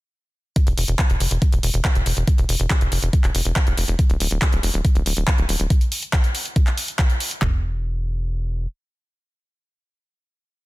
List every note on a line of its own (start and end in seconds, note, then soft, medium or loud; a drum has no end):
0.56 kick loud
0.56 closed hi-hat loud
0.67 0.74 E1 medium
0.67 closed hi-hat medium
0.78 0.84 E1 loud
0.78 open hi-hat loud
0.88 0.95 E1 medium
0.88 closed hi-hat medium
0.99 kick loud
0.99 clap loud
0.99 closed hi-hat loud
1.10 1.17 E1 medium
1.10 closed hi-hat medium
1.20 1.27 F1 medium
1.20 open hi-hat loud
1.31 1.38 E1 medium
1.31 closed hi-hat medium
1.42 kick loud
1.42 closed hi-hat loud
1.52 1.59 E1 medium
1.52 closed hi-hat medium
1.63 1.70 E1 loud
1.63 open hi-hat loud
1.74 1.81 E1 medium
1.74 closed hi-hat medium
1.85 kick loud
1.85 clap loud
1.85 closed hi-hat loud
1.95 2.02 E1 medium
1.95 closed hi-hat medium
2.06 2.13 E1 loud
2.06 open hi-hat loud
2.17 2.24 E1 loud
2.17 closed hi-hat medium
2.28 kick loud
2.28 closed hi-hat loud
2.38 2.45 E1 medium
2.38 closed hi-hat medium
2.49 2.56 E1 loud
2.49 open hi-hat loud
2.60 2.67 E1 loud
2.60 closed hi-hat medium
2.70 kick loud
2.70 clap loud
2.70 closed hi-hat medium
2.81 2.88 E1 medium
2.81 closed hi-hat medium
2.92 2.99 F1 loud
2.92 open hi-hat loud
3.02 3.09 E1 medium
3.02 closed hi-hat medium
3.13 kick loud
3.13 closed hi-hat medium
3.24 3.31 E1 medium
3.24 clap soft
3.24 closed hi-hat medium
3.35 3.42 E1 loud
3.35 open hi-hat loud
3.45 3.52 E1 medium
3.45 closed hi-hat medium
3.56 kick loud
3.56 clap loud
3.56 closed hi-hat loud
3.67 3.74 E1 medium
3.67 closed hi-hat medium
3.77 3.84 E1 medium
3.77 open hi-hat loud
3.88 3.95 E1 loud
3.88 closed hi-hat medium
3.99 kick loud
3.99 closed hi-hat medium
4.10 4.17 D1 medium
4.10 closed hi-hat medium
4.20 4.27 D1 loud
4.20 open hi-hat loud
4.31 4.38 D1 medium
4.31 closed hi-hat medium
4.42 kick loud
4.42 clap loud
4.42 closed hi-hat medium
4.52 4.59 D1 medium
4.52 closed hi-hat medium
4.63 4.70 E1 loud
4.63 open hi-hat loud
4.74 4.81 D1 loud
4.74 closed hi-hat medium
4.85 kick loud
4.85 closed hi-hat medium
4.95 5.02 D1 medium
4.95 closed hi-hat medium
5.06 5.13 D1 loud
5.06 open hi-hat loud
5.17 5.24 D1 medium
5.17 closed hi-hat medium
5.27 kick loud
5.27 clap loud
5.27 closed hi-hat medium
5.38 5.45 D1 medium
5.38 closed hi-hat medium
5.49 5.56 D1 loud
5.49 open hi-hat loud
5.60 5.67 D1 medium
5.60 closed hi-hat medium
5.70 kick loud
5.70 closed hi-hat medium
5.81 closed hi-hat soft
5.92 open hi-hat loud
6.02 closed hi-hat soft
6.13 kick loud
6.13 clap loud
6.13 closed hi-hat medium
6.24 closed hi-hat medium
6.35 open hi-hat loud
6.45 closed hi-hat medium
6.56 kick loud
6.56 closed hi-hat medium
6.67 clap soft
6.67 closed hi-hat medium
6.78 open hi-hat loud
6.88 closed hi-hat soft
6.99 kick loud
6.99 clap loud
6.99 closed hi-hat medium
7.10 closed hi-hat medium
7.20 open hi-hat loud
7.31 closed hi-hat medium
7.42 8.66 E1 loud
7.42 kick loud
7.42 clap medium
7.42 floor tom loud